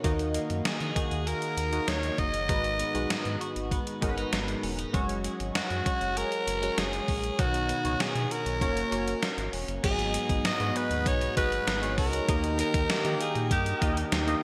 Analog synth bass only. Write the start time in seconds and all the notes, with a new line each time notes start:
0.04 D#2
0.50 F#2
0.66 D#3
0.81 D#3
1.11 D#2
1.57 D#2
1.88 D#2
2.18 F#1
2.49 G#1
2.95 B1
3.10 G#2
3.26 G#2
3.56 G#1
4.02 G#1
4.33 G#1
4.63 E1
4.94 F#1
5.40 G#1
5.55 F#2
5.71 F#2
6.01 F#1
6.47 F#1
6.78 F#1
7.08 A#1
7.39 B1
7.85 C#2
8.00 B2
8.15 B2
8.46 B1
8.61 F#1
8.92 F#1
9.38 G#1
9.53 E1
9.68 F#1
9.84 G#1
10.29 G#1
10.45 G#2
10.60 G#2
10.91 D#2
11.06 B1
11.37 G#1
11.67 G#1
11.98 C#2
12.29 D#2
12.74 D#2
12.90 D#3
13.05 D#3
13.36 A#2
13.51 G2
13.82 D#2
14.12 D#2